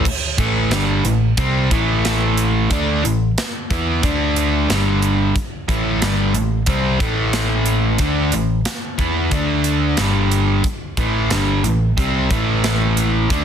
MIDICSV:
0, 0, Header, 1, 4, 480
1, 0, Start_track
1, 0, Key_signature, 0, "minor"
1, 0, Tempo, 662983
1, 41, Time_signature, 4, 2, 24, 8
1, 9733, End_track
2, 0, Start_track
2, 0, Title_t, "Overdriven electric guitar"
2, 0, Program_c, 0, 29
2, 277, Note_on_c, 0, 45, 83
2, 280, Note_on_c, 0, 52, 81
2, 285, Note_on_c, 0, 57, 93
2, 511, Note_off_c, 0, 45, 0
2, 513, Note_off_c, 0, 52, 0
2, 516, Note_off_c, 0, 57, 0
2, 516, Note_on_c, 0, 43, 82
2, 522, Note_on_c, 0, 50, 94
2, 522, Note_on_c, 0, 55, 102
2, 751, Note_off_c, 0, 43, 0
2, 754, Note_off_c, 0, 50, 0
2, 754, Note_off_c, 0, 55, 0
2, 759, Note_on_c, 0, 45, 65
2, 762, Note_on_c, 0, 52, 66
2, 952, Note_off_c, 0, 45, 0
2, 953, Note_off_c, 0, 52, 0
2, 997, Note_on_c, 0, 48, 95
2, 999, Note_on_c, 0, 55, 85
2, 1003, Note_on_c, 0, 60, 98
2, 1231, Note_off_c, 0, 48, 0
2, 1233, Note_off_c, 0, 55, 0
2, 1235, Note_off_c, 0, 60, 0
2, 1236, Note_on_c, 0, 45, 86
2, 1243, Note_on_c, 0, 57, 97
2, 1245, Note_on_c, 0, 52, 94
2, 1951, Note_off_c, 0, 45, 0
2, 1954, Note_off_c, 0, 57, 0
2, 1955, Note_off_c, 0, 52, 0
2, 1958, Note_on_c, 0, 50, 88
2, 1962, Note_on_c, 0, 57, 89
2, 1966, Note_on_c, 0, 62, 95
2, 2192, Note_off_c, 0, 50, 0
2, 2194, Note_off_c, 0, 57, 0
2, 2195, Note_on_c, 0, 45, 59
2, 2196, Note_off_c, 0, 62, 0
2, 2199, Note_on_c, 0, 52, 72
2, 2389, Note_off_c, 0, 45, 0
2, 2392, Note_off_c, 0, 52, 0
2, 2682, Note_on_c, 0, 59, 84
2, 2683, Note_on_c, 0, 52, 80
2, 2686, Note_on_c, 0, 64, 96
2, 2914, Note_off_c, 0, 52, 0
2, 2914, Note_off_c, 0, 59, 0
2, 2916, Note_off_c, 0, 64, 0
2, 2919, Note_on_c, 0, 50, 81
2, 2925, Note_on_c, 0, 57, 94
2, 2927, Note_on_c, 0, 62, 93
2, 3388, Note_off_c, 0, 50, 0
2, 3392, Note_on_c, 0, 43, 88
2, 3396, Note_off_c, 0, 62, 0
2, 3397, Note_off_c, 0, 57, 0
2, 3397, Note_on_c, 0, 50, 98
2, 3397, Note_on_c, 0, 55, 105
2, 3868, Note_off_c, 0, 43, 0
2, 3870, Note_off_c, 0, 50, 0
2, 3870, Note_off_c, 0, 55, 0
2, 4114, Note_on_c, 0, 45, 83
2, 4115, Note_on_c, 0, 52, 90
2, 4121, Note_on_c, 0, 57, 95
2, 4349, Note_off_c, 0, 45, 0
2, 4350, Note_off_c, 0, 52, 0
2, 4353, Note_off_c, 0, 57, 0
2, 4354, Note_on_c, 0, 43, 90
2, 4359, Note_on_c, 0, 50, 90
2, 4361, Note_on_c, 0, 55, 92
2, 4589, Note_off_c, 0, 43, 0
2, 4591, Note_off_c, 0, 50, 0
2, 4592, Note_off_c, 0, 55, 0
2, 4597, Note_on_c, 0, 45, 60
2, 4598, Note_on_c, 0, 52, 66
2, 4790, Note_off_c, 0, 45, 0
2, 4790, Note_off_c, 0, 52, 0
2, 4827, Note_on_c, 0, 48, 91
2, 4833, Note_on_c, 0, 55, 87
2, 4833, Note_on_c, 0, 60, 89
2, 5065, Note_off_c, 0, 48, 0
2, 5068, Note_off_c, 0, 55, 0
2, 5068, Note_off_c, 0, 60, 0
2, 5068, Note_on_c, 0, 45, 89
2, 5071, Note_on_c, 0, 52, 93
2, 5076, Note_on_c, 0, 57, 92
2, 5781, Note_off_c, 0, 57, 0
2, 5782, Note_off_c, 0, 45, 0
2, 5785, Note_on_c, 0, 50, 85
2, 5786, Note_off_c, 0, 52, 0
2, 5789, Note_on_c, 0, 57, 86
2, 5792, Note_on_c, 0, 62, 105
2, 6024, Note_off_c, 0, 50, 0
2, 6026, Note_off_c, 0, 57, 0
2, 6027, Note_off_c, 0, 62, 0
2, 6029, Note_on_c, 0, 45, 60
2, 6033, Note_on_c, 0, 52, 65
2, 6225, Note_off_c, 0, 45, 0
2, 6227, Note_off_c, 0, 52, 0
2, 6500, Note_on_c, 0, 52, 81
2, 6502, Note_on_c, 0, 59, 92
2, 6507, Note_on_c, 0, 64, 92
2, 6739, Note_off_c, 0, 59, 0
2, 6740, Note_off_c, 0, 52, 0
2, 6742, Note_on_c, 0, 57, 86
2, 6743, Note_off_c, 0, 64, 0
2, 6743, Note_on_c, 0, 50, 83
2, 6746, Note_on_c, 0, 62, 89
2, 7217, Note_off_c, 0, 50, 0
2, 7222, Note_on_c, 0, 43, 86
2, 7224, Note_off_c, 0, 62, 0
2, 7226, Note_on_c, 0, 50, 90
2, 7230, Note_off_c, 0, 57, 0
2, 7230, Note_on_c, 0, 55, 96
2, 7702, Note_off_c, 0, 43, 0
2, 7703, Note_off_c, 0, 50, 0
2, 7706, Note_off_c, 0, 55, 0
2, 7948, Note_on_c, 0, 45, 79
2, 7951, Note_on_c, 0, 52, 86
2, 7957, Note_on_c, 0, 57, 87
2, 8185, Note_off_c, 0, 45, 0
2, 8186, Note_off_c, 0, 52, 0
2, 8189, Note_off_c, 0, 57, 0
2, 8191, Note_on_c, 0, 43, 91
2, 8196, Note_on_c, 0, 50, 101
2, 8196, Note_on_c, 0, 55, 99
2, 8426, Note_off_c, 0, 43, 0
2, 8428, Note_off_c, 0, 55, 0
2, 8429, Note_off_c, 0, 50, 0
2, 8432, Note_on_c, 0, 45, 61
2, 8432, Note_on_c, 0, 52, 64
2, 8626, Note_off_c, 0, 45, 0
2, 8626, Note_off_c, 0, 52, 0
2, 8674, Note_on_c, 0, 48, 83
2, 8678, Note_on_c, 0, 55, 91
2, 8680, Note_on_c, 0, 60, 99
2, 8908, Note_off_c, 0, 48, 0
2, 8909, Note_off_c, 0, 55, 0
2, 8911, Note_off_c, 0, 60, 0
2, 8911, Note_on_c, 0, 45, 79
2, 8918, Note_on_c, 0, 52, 100
2, 8919, Note_on_c, 0, 57, 95
2, 9626, Note_off_c, 0, 45, 0
2, 9629, Note_off_c, 0, 52, 0
2, 9630, Note_off_c, 0, 57, 0
2, 9639, Note_on_c, 0, 50, 92
2, 9643, Note_on_c, 0, 57, 94
2, 9645, Note_on_c, 0, 62, 100
2, 9733, Note_off_c, 0, 50, 0
2, 9733, Note_off_c, 0, 57, 0
2, 9733, Note_off_c, 0, 62, 0
2, 9733, End_track
3, 0, Start_track
3, 0, Title_t, "Picked electric bass"
3, 0, Program_c, 1, 34
3, 272, Note_on_c, 1, 33, 75
3, 499, Note_off_c, 1, 33, 0
3, 508, Note_on_c, 1, 31, 83
3, 737, Note_off_c, 1, 31, 0
3, 750, Note_on_c, 1, 33, 77
3, 978, Note_off_c, 1, 33, 0
3, 994, Note_on_c, 1, 36, 89
3, 1220, Note_off_c, 1, 36, 0
3, 1239, Note_on_c, 1, 33, 86
3, 1930, Note_off_c, 1, 33, 0
3, 1959, Note_on_c, 1, 38, 85
3, 2183, Note_off_c, 1, 38, 0
3, 2206, Note_on_c, 1, 33, 62
3, 2426, Note_off_c, 1, 33, 0
3, 2684, Note_on_c, 1, 40, 89
3, 2905, Note_off_c, 1, 40, 0
3, 2920, Note_on_c, 1, 38, 90
3, 3370, Note_off_c, 1, 38, 0
3, 3399, Note_on_c, 1, 31, 87
3, 3850, Note_off_c, 1, 31, 0
3, 4119, Note_on_c, 1, 33, 82
3, 4342, Note_off_c, 1, 33, 0
3, 4354, Note_on_c, 1, 31, 89
3, 4579, Note_off_c, 1, 31, 0
3, 4590, Note_on_c, 1, 33, 74
3, 4817, Note_off_c, 1, 33, 0
3, 4830, Note_on_c, 1, 36, 88
3, 5056, Note_off_c, 1, 36, 0
3, 5072, Note_on_c, 1, 33, 87
3, 5765, Note_off_c, 1, 33, 0
3, 5784, Note_on_c, 1, 38, 90
3, 6013, Note_off_c, 1, 38, 0
3, 6024, Note_on_c, 1, 33, 64
3, 6253, Note_off_c, 1, 33, 0
3, 6505, Note_on_c, 1, 40, 85
3, 6733, Note_off_c, 1, 40, 0
3, 6741, Note_on_c, 1, 38, 89
3, 7199, Note_off_c, 1, 38, 0
3, 7224, Note_on_c, 1, 31, 80
3, 7681, Note_off_c, 1, 31, 0
3, 7943, Note_on_c, 1, 33, 83
3, 8172, Note_off_c, 1, 33, 0
3, 8188, Note_on_c, 1, 31, 85
3, 8414, Note_off_c, 1, 31, 0
3, 8424, Note_on_c, 1, 33, 74
3, 8652, Note_off_c, 1, 33, 0
3, 8673, Note_on_c, 1, 36, 84
3, 8897, Note_off_c, 1, 36, 0
3, 8910, Note_on_c, 1, 33, 88
3, 9603, Note_off_c, 1, 33, 0
3, 9631, Note_on_c, 1, 38, 87
3, 9733, Note_off_c, 1, 38, 0
3, 9733, End_track
4, 0, Start_track
4, 0, Title_t, "Drums"
4, 38, Note_on_c, 9, 36, 101
4, 44, Note_on_c, 9, 49, 92
4, 111, Note_off_c, 9, 36, 0
4, 117, Note_off_c, 9, 49, 0
4, 277, Note_on_c, 9, 36, 98
4, 279, Note_on_c, 9, 42, 60
4, 350, Note_off_c, 9, 36, 0
4, 352, Note_off_c, 9, 42, 0
4, 516, Note_on_c, 9, 42, 82
4, 519, Note_on_c, 9, 38, 106
4, 588, Note_off_c, 9, 42, 0
4, 591, Note_off_c, 9, 38, 0
4, 758, Note_on_c, 9, 42, 65
4, 831, Note_off_c, 9, 42, 0
4, 994, Note_on_c, 9, 42, 82
4, 997, Note_on_c, 9, 36, 98
4, 1067, Note_off_c, 9, 42, 0
4, 1069, Note_off_c, 9, 36, 0
4, 1240, Note_on_c, 9, 36, 100
4, 1240, Note_on_c, 9, 42, 62
4, 1312, Note_off_c, 9, 36, 0
4, 1312, Note_off_c, 9, 42, 0
4, 1483, Note_on_c, 9, 42, 85
4, 1486, Note_on_c, 9, 38, 93
4, 1556, Note_off_c, 9, 42, 0
4, 1559, Note_off_c, 9, 38, 0
4, 1720, Note_on_c, 9, 42, 64
4, 1792, Note_off_c, 9, 42, 0
4, 1959, Note_on_c, 9, 42, 89
4, 1960, Note_on_c, 9, 36, 91
4, 2032, Note_off_c, 9, 42, 0
4, 2033, Note_off_c, 9, 36, 0
4, 2208, Note_on_c, 9, 42, 65
4, 2280, Note_off_c, 9, 42, 0
4, 2445, Note_on_c, 9, 42, 89
4, 2448, Note_on_c, 9, 38, 107
4, 2518, Note_off_c, 9, 42, 0
4, 2520, Note_off_c, 9, 38, 0
4, 2683, Note_on_c, 9, 36, 102
4, 2687, Note_on_c, 9, 42, 71
4, 2755, Note_off_c, 9, 36, 0
4, 2760, Note_off_c, 9, 42, 0
4, 2919, Note_on_c, 9, 42, 87
4, 2921, Note_on_c, 9, 36, 106
4, 2992, Note_off_c, 9, 42, 0
4, 2993, Note_off_c, 9, 36, 0
4, 3160, Note_on_c, 9, 42, 66
4, 3232, Note_off_c, 9, 42, 0
4, 3402, Note_on_c, 9, 42, 83
4, 3405, Note_on_c, 9, 38, 99
4, 3475, Note_off_c, 9, 42, 0
4, 3478, Note_off_c, 9, 38, 0
4, 3638, Note_on_c, 9, 42, 66
4, 3710, Note_off_c, 9, 42, 0
4, 3878, Note_on_c, 9, 36, 99
4, 3881, Note_on_c, 9, 42, 80
4, 3950, Note_off_c, 9, 36, 0
4, 3953, Note_off_c, 9, 42, 0
4, 4118, Note_on_c, 9, 36, 95
4, 4125, Note_on_c, 9, 42, 63
4, 4191, Note_off_c, 9, 36, 0
4, 4198, Note_off_c, 9, 42, 0
4, 4358, Note_on_c, 9, 42, 80
4, 4361, Note_on_c, 9, 38, 106
4, 4430, Note_off_c, 9, 42, 0
4, 4433, Note_off_c, 9, 38, 0
4, 4594, Note_on_c, 9, 42, 61
4, 4666, Note_off_c, 9, 42, 0
4, 4825, Note_on_c, 9, 42, 83
4, 4830, Note_on_c, 9, 36, 105
4, 4897, Note_off_c, 9, 42, 0
4, 4903, Note_off_c, 9, 36, 0
4, 5070, Note_on_c, 9, 36, 104
4, 5070, Note_on_c, 9, 42, 61
4, 5142, Note_off_c, 9, 36, 0
4, 5143, Note_off_c, 9, 42, 0
4, 5308, Note_on_c, 9, 42, 81
4, 5311, Note_on_c, 9, 38, 104
4, 5380, Note_off_c, 9, 42, 0
4, 5383, Note_off_c, 9, 38, 0
4, 5543, Note_on_c, 9, 42, 63
4, 5615, Note_off_c, 9, 42, 0
4, 5781, Note_on_c, 9, 42, 85
4, 5786, Note_on_c, 9, 36, 102
4, 5853, Note_off_c, 9, 42, 0
4, 5859, Note_off_c, 9, 36, 0
4, 6024, Note_on_c, 9, 42, 63
4, 6096, Note_off_c, 9, 42, 0
4, 6265, Note_on_c, 9, 42, 89
4, 6268, Note_on_c, 9, 38, 107
4, 6338, Note_off_c, 9, 42, 0
4, 6341, Note_off_c, 9, 38, 0
4, 6507, Note_on_c, 9, 36, 96
4, 6507, Note_on_c, 9, 42, 70
4, 6579, Note_off_c, 9, 36, 0
4, 6579, Note_off_c, 9, 42, 0
4, 6743, Note_on_c, 9, 42, 85
4, 6745, Note_on_c, 9, 36, 95
4, 6816, Note_off_c, 9, 42, 0
4, 6817, Note_off_c, 9, 36, 0
4, 6980, Note_on_c, 9, 42, 64
4, 7053, Note_off_c, 9, 42, 0
4, 7219, Note_on_c, 9, 42, 87
4, 7222, Note_on_c, 9, 38, 100
4, 7292, Note_off_c, 9, 42, 0
4, 7295, Note_off_c, 9, 38, 0
4, 7468, Note_on_c, 9, 42, 62
4, 7541, Note_off_c, 9, 42, 0
4, 7704, Note_on_c, 9, 42, 89
4, 7705, Note_on_c, 9, 36, 103
4, 7776, Note_off_c, 9, 42, 0
4, 7777, Note_off_c, 9, 36, 0
4, 7944, Note_on_c, 9, 36, 101
4, 7944, Note_on_c, 9, 42, 61
4, 8017, Note_off_c, 9, 36, 0
4, 8017, Note_off_c, 9, 42, 0
4, 8185, Note_on_c, 9, 42, 84
4, 8188, Note_on_c, 9, 38, 113
4, 8258, Note_off_c, 9, 42, 0
4, 8261, Note_off_c, 9, 38, 0
4, 8429, Note_on_c, 9, 42, 62
4, 8501, Note_off_c, 9, 42, 0
4, 8671, Note_on_c, 9, 36, 97
4, 8676, Note_on_c, 9, 42, 82
4, 8743, Note_off_c, 9, 36, 0
4, 8748, Note_off_c, 9, 42, 0
4, 8909, Note_on_c, 9, 36, 100
4, 8915, Note_on_c, 9, 42, 57
4, 8982, Note_off_c, 9, 36, 0
4, 8987, Note_off_c, 9, 42, 0
4, 9151, Note_on_c, 9, 42, 81
4, 9154, Note_on_c, 9, 38, 93
4, 9223, Note_off_c, 9, 42, 0
4, 9226, Note_off_c, 9, 38, 0
4, 9391, Note_on_c, 9, 42, 62
4, 9463, Note_off_c, 9, 42, 0
4, 9631, Note_on_c, 9, 42, 87
4, 9632, Note_on_c, 9, 36, 101
4, 9703, Note_off_c, 9, 42, 0
4, 9704, Note_off_c, 9, 36, 0
4, 9733, End_track
0, 0, End_of_file